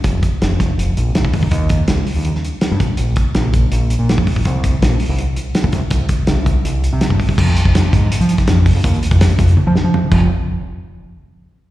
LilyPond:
<<
  \new Staff \with { instrumentName = "Fingered electric bass" } { \clef bass \time 4/4 \key bes \dorian \tempo 4 = 164 f,,8 r8 f,,4 f,,8 bes,,8 c,8 ees,8 | ees,4 des,8 r16 ees,8 r4 g,16 bes,,16 r16 | bes,,8 r8 bes,,4 bes,,8. bes,8 f,16 r16 bes,,16 | c,4 bes,,8 r16 c,8 r4 ees,16 c,16 r16 |
c,8 r8 c,4 c,8. c8 g,16 r16 c,16 | f,8. f,8 r16 aes,8 r16 f8 r16 f,8. f,16 | ees,8 r16 f,8. f,8 r16 f16 r16 f8. f,,8 | r1 | }
  \new DrumStaff \with { instrumentName = "Drums" } \drummode { \time 4/4 <hh bd>8 <hh bd>8 <hh sn>8 <hh bd sn>8 hh8 hh8 <hh sn>16 bd16 <hho bd>16 bd16 | <hh bd>8 <hh bd>8 <hh sn>8 hho8 hh16 sn16 hh8 <hh sn>8 <hh bd sn>8 | hh8 <hh bd>8 <hh sn>8 <hh bd>8 hh8 hh8 <hh sn>16 bd16 <hho bd>16 bd16 | <hh bd>8 <hh bd>8 <hh sn>8 hho8 hh8 hh8 <hh sn>16 bd16 <hh bd sn>8 |
<hh bd>8 <hh bd>8 <hh sn>8 <hh bd>8 hh8 hh8 <hh sn>16 bd16 <hho bd>16 bd16 | <cymc bd>16 hh16 hh16 bd16 <hh sn>8 <hh bd>8 hh16 hh16 hh16 <hh bd sn>16 <hh sn>8 <hho bd>8 | <hh bd>16 hh16 hh16 <hh bd>16 <hh sn>16 hh16 <hh bd>16 hh16 tommh8 sn8 toml8 <cymc bd>8 | r4 r4 r4 r4 | }
>>